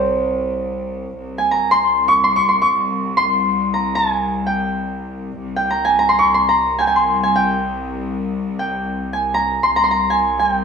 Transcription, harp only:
Already playing: C5 G5 A#5
1.38 G#5
1.51 A#5
1.71 C6
2.08 C#6
2.24 C6
2.36 C#6
2.49 C6
2.62 C#6
3.17 C6
3.74 A#5
3.95 G#5
4.47 G5
5.56 G5
5.70 A#5
5.85 G#5
5.99 A#5
6.09 C6
6.19 C#6
6.34 C6
6.49 A#5
6.79 G5 G#5
6.87 G#5
6.96 C6
7.23 G#5
7.36 G5
8.59 G5
9.13 G#5
9.34 A#5
9.63 C6
9.76 A#5
9.84 C6
9.91 A#5
10.10 G#5
10.39 G5

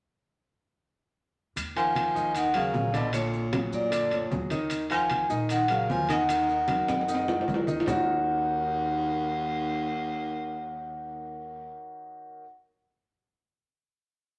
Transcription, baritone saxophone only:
1.77 F3
2.36 D#3
2.56 C#3
2.95 B2
3.14 A#2
3.73 A#2
4.13 A#2
4.91 F3
5.51 D#3
5.70 C#3
5.90 F3
6.09 D#3
7.87 D#2

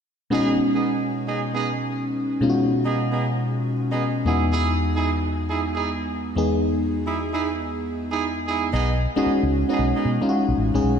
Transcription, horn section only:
0.31 B3 D#4 G#4
0.74 B3 D#4 G#4
1.27 B3 D#4 G#4
1.53 B3 D#4 G#4
2.85 B3 D#4 G#4
3.11 B3 D#4 G#4
3.90 B3 D#4 G#4
4.26 D#4 E4 G#4
4.52 D#4 E4 G#4
4.95 D#4 E4 G#4
5.48 D#4 E4 G#4
5.74 D#4 E4 G#4
7.06 D#4 E4 G#4
7.32 D#4 E4 G#4
8.11 D#4 E4 G#4
8.47 D#4 E4 G#4
8.73 B3 D#4 G#4
9.16 B3 D#4 G#4
9.69 B3 D#4 G#4
9.95 B3 D#4 G#4

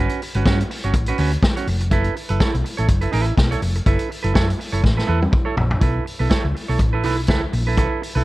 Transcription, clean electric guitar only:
Already playing: C#4
0.00 F#4 B4
0.22 muted clean electric guitar stroke
0.35 C#4 F#4 B4
0.46 C#4 F#4 C#5
0.59 muted clean electric guitar stroke
0.70 muted clean electric guitar stroke
0.84 C#4 F#4 C#5
0.95 muted clean electric guitar stroke
1.08 C#4 F#4 B4
1.19 C#4 F#4 B4
1.33 muted clean electric guitar stroke
1.43 muted clean electric guitar stroke
1.56 C#4 F#4 C#5
1.68 muted clean electric guitar stroke
1.81 muted clean electric guitar stroke
1.91 E4 A4 B4
2.16 muted clean electric guitar stroke
2.29 E4 A4 B4
2.40 E4 A4 C#5
2.53 muted clean electric guitar stroke
2.64 muted clean electric guitar stroke
2.77 E4 A4 C#5
2.88 muted clean electric guitar stroke
3.01 E4 A4 B4
3.12 E4 A4 B4
3.27 muted clean electric guitar stroke
3.37 muted clean electric guitar stroke
3.51 E4 A4 C#5
3.62 muted clean electric guitar stroke
3.76 muted clean electric guitar stroke
3.86 E4 A4 B4
4.10 muted clean electric guitar stroke
4.23 E4 A4 B4
4.34 E4 A4 C#5
4.48 muted clean electric guitar stroke
4.59 muted clean electric guitar stroke
4.72 E4 A4 C#5
4.83 muted clean electric guitar stroke
4.97 E4 A4 B4
5.07 E4 A4 B4
5.21 muted clean electric guitar stroke
5.31 muted clean electric guitar stroke
5.45 E4 A4 C#5
5.56 muted clean electric guitar stroke
5.71 muted clean electric guitar stroke
5.81 E4 A4 B4
6.05 muted clean electric guitar stroke
6.19 E4 A4 B4
6.30 E4 A4 C#5
6.45 muted clean electric guitar stroke
6.55 muted clean electric guitar stroke
6.68 E4 A4 C#5
6.80 muted clean electric guitar stroke
6.93 E4 A4 B4
7.04 E4 A4 B4
7.17 muted clean electric guitar stroke
7.28 E4 A4 B4
7.42 muted clean electric guitar stroke
7.53 muted clean electric guitar stroke
7.67 E4 A4 B4
7.77 E4 A4 B4
8.02 muted clean electric guitar stroke
8.15 E4 A4 B4

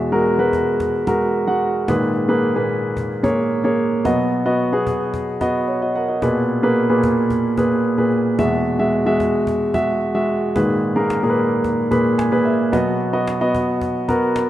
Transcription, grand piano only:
Already playing: E2 B2 G#3 F#4 E5
0.12 G#3 F#4 A#4
0.39 G#3 F#4 B4
1.07 G#3 F#4 A#4
1.47 G#3 F#4 F#5
1.88 G#2 A#2 D#3 G#4 B4
2.28 A#3 G#4 B4
2.55 A#2 G#4 B4
3.23 A#3 G#4 C#5
3.64 A#3 G#4 C#5
4.05 B2 F#3 B3 F#4 D#5
4.46 B3 F#4 D#5
4.72 B3 F#4 G#4
5.41 B3 F#4 D#5
5.68 C#5
5.82 F#4 D#5
5.96 A#4 F#5
6.08 F#4 D#5
6.22 A#2 B2 G#4 B4
6.63 A#3 G#4 B4
6.89 A#2 G#4 B4
7.57 A#2 G#4 B4
7.98 A#2 G#4 B4
8.38 E2 B2 G#3 F#4 E5
8.79 G#3 F#4 E5
9.06 G#3 F#4 E5
9.74 G#3 F#4 E5
10.14 G#3 F#4 E5
10.55 G#2 A#2 D#3 G#4 B4
10.96 A#3 G#4 A#4
11.23 A#2 G#4 A#4
11.30 B4
11.91 A#2 G#4 B4 B5
12.18 G#5
12.32 A#2 G#4 B4
12.45 E5
12.72 B2 F#3 B3 F#4 D#5
13.13 B3 F#4 D#5
13.41 B3 F#4 D#5
14.08 B3 F#4 A#4

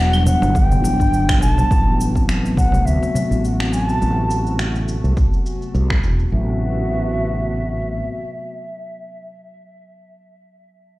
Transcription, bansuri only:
Already playing: F#5
0.26 F#5
0.55 G5
1.42 A5
2.58 F#5
2.86 E5
3.73 G#5
3.89 A5
6.32 E5

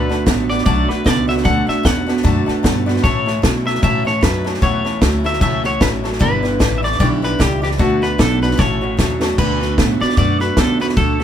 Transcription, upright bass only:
Already playing: D2
0.27 A1
0.66 B1
0.89 muted upright bass stroke
1.06 C#2
1.45 D2
1.68 muted upright bass stroke
1.85 E2
2.24 F#2
2.48 muted upright bass stroke
2.64 G2
3.04 A2
3.43 B2
3.83 A2
4.23 F#2
4.62 E2
5.02 D2
5.41 C#2
5.81 A1
6.21 G1
6.60 A1
7.00 B1
7.40 C#2
7.79 D2
8.19 B1
8.59 A1
8.99 E2
9.38 D2
9.78 A2
10.01 muted upright bass stroke
10.17 F#2
10.57 E2
10.97 D2

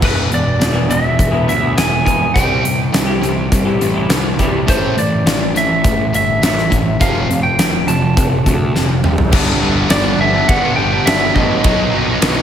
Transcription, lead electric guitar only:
0.05 B4
0.34 D5
0.91 E5
1.49 E5
1.78 G#5
2.06 G#5
2.34 G5
4.70 C5
4.99 D5
5.57 E5
6.15 E5
6.44 E5
7.01 F5
7.43 G5
7.88 A5
9.91 D5
10.21 E5
10.48 F#5
10.76 G5
11.06 E5
11.35 D#5

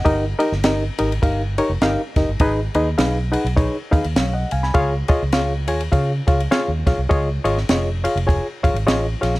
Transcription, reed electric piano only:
Already playing: F#5
0.05 D#4 G4 A#4 D#5
0.39 D#4 G4 A#4 D#5
0.64 D#4 G4 A#4 D#5
0.99 D#4 G4 A#4 D#5
1.22 D#4 G4 A#4 F5
1.58 D#4 G4 A#4 C#5
1.82 D#4 G4 A#4 F5
2.17 D#4 G4 A#4 D#5
2.41 D#4 G#4 B4 D#5
2.75 D#4 G#4 B4 D#5
2.98 D#4 G#4 B4 F5
3.32 D#4 G#4 B4 F#5
3.56 D#4 G#4 B4 C#5
3.91 D#4 G#4 B4 F5
4.16 C#5 F5
4.33 D#5 F#5
4.52 F5 G#5
4.63 G#5 B5
4.74 F4 G#4 C#5 F5
5.09 F4 G#4 C#5 D#5
5.33 F4 G#4 C#5 F5
5.68 F4 G#4 C#5 G#5
5.92 F4 G#4 C#5 F5
6.27 F4 G#4 C#5 F5
6.51 F4 G#4 C#5 F5
6.87 F4 G#4 C#5 F5
7.09 F4 G#4 C#5 D#5
7.44 F4 G#4 C#5 D#5
7.70 F4 G#4 C#5 D#5
8.04 F4 G#4 C#5 F5
8.27 F4 G#4 C#5 G#5
8.63 F4 G#4 C#5 F5
8.87 F4 G#4 C#5 D#5
9.21 F4 G#4 C#5 F5

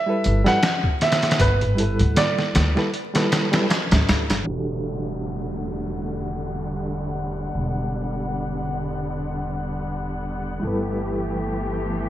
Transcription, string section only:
4.46 D3 G3 A3 F#5
7.56 B3
10.61 E3 A3 G4

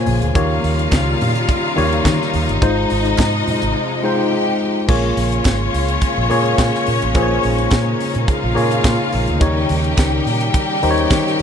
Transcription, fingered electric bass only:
0.07 A#1
0.22 D2
0.35 D#2
0.64 D#2
0.92 C#2
1.21 A#2
1.78 D#2
2.05 D#3
2.34 D#2
2.49 G1
2.62 G#1
2.91 G#1
3.19 G#2
3.62 G#1
4.89 A#1
5.17 A#1
5.45 G#1
5.74 C#2
6.18 A#1
6.31 A#2
6.58 A#2
6.88 A#2
7.03 A1
7.15 A#1
7.45 A#1
7.72 A#2
8.16 A#2
8.44 A#1
8.57 A#2
8.85 A#2
9.14 A#1
9.29 D2
9.41 D#2
9.70 D#2
9.98 C#2
10.27 A#2
10.83 D#2
11.11 D#3

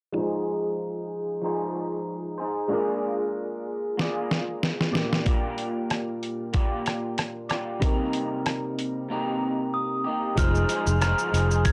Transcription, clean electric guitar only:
0.14 F3 D#4 G#4
0.19 C5
1.42 F3 D#4 G#4 C5
2.38 D#4 G#4 C5
2.69 A#3 F4 G#4
2.74 D5
3.97 A#3 F4 G#4 D5
4.93 F4 G4 D5
5.25 A#3 F4
5.29 G4 D5
6.53 A#3 F4 G4 D5
7.49 F4 G4 D5
7.80 C3 A#3 D#4
7.86 G4
9.09 C3 A#3 D#4 G4
10.04 A#3 D#4 G4
10.37 F3 D#4 G#4 C5
10.69 F3 D#4 G#4 C5
10.86 D#4 G#4 C5
11.00 F3 D#4 G#4 C5
11.32 F3 D#4 G#4 C5
11.49 D#4 G#4 C5

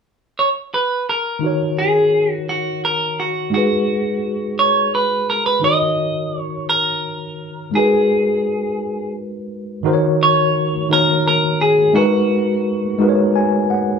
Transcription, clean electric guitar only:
0.39 C#5
0.74 B4
1.09 A#4
1.79 G#4
2.32 F#4
2.49 F#4
2.85 A#4
3.20 F#4
3.54 F#4
4.59 C#5
4.95 B4
5.30 A#4
5.46 B4
5.64 D#5
6.39 C#5
6.69 A#4
7.75 G#4
10.23 C#5
10.93 A#4
11.28 A#4
11.61 G#4
11.96 F#4

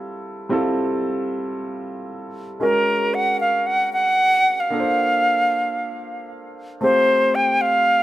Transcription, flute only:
2.62 A#4
3.14 F#5
3.40 F5
3.67 F#5
3.93 F#5
4.60 F5
6.82 C5
7.35 G5
7.61 F5

